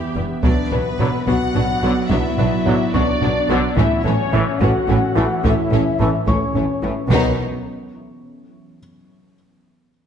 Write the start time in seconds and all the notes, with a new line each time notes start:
Already playing: E3 G3 B3 G4 E5 B5 E6
0.16 E1 E2 G3 B3, taiko low
0.43 B1 B2 F#3 B3 D4 F#4 D5, taiko
0.71 B1 B2 F#3 B3 D4 B4, taiko low-mid
0.98 B1 B2 D3 F#3 B3 D4 F#4 B5, taiko low-mid
1.27 B1 B2 F#3 B3 D4 F#4 F#5, taiko
1.55 B1 B2 F#3 B3 D4, taiko low-mid
1.83 B1 B2 D3 F#3 B3 D4 F#4
2.10 B1 B2 F#3 B3 D4 E4 E5, taiko
2.38 B1 B2 F#3 B3 D4 B4, taiko low-mid
2.66 B1 B2 D3 F#3 B3 D4 F#4, taiko low-mid
2.94 B1 B2 F#3 B3 D4 D5 C#6, taiko
3.21 B1 B2 F#3 B3 D4, taiko low-mid
3.49 B1 B2 D3 F#3 B3 D4 F#4
3.77 A1 A2 E3 A3 C#4 E4 A4 C#5 E5, taiko
4.04 A1 A2 E3 A3 C#4 A4 C#5, taiko low-mid
4.33 A1 A2 E3 A3 C#4 E4, taiko low-mid
4.60 A1 A2 E3 A3 C#4 F#4 F#5, taiko
4.88 A1 A2 E3 A3 C#4, taiko low-mid
5.16 A1 A2 E3 A3 C#4 E4
5.44 A1 A2 E3 A3 C#4 E4 E5, taiko
5.71 A1 A2 E3 A3 C#4 A4, taiko low-mid
5.99 A1 A2 E3 A3 C#4 E4, taiko low-mid
6.26 A1 A2 E3 A3 C#4 C#5 C#6, taiko
6.55 A1 A2 E3 A3 C#4, taiko low-mid
6.83 A1 A2 E3 A3 C#4 E4, taiko rim
7.10 B1 B2 D#3 F#3 B3 D#4 B4, taiko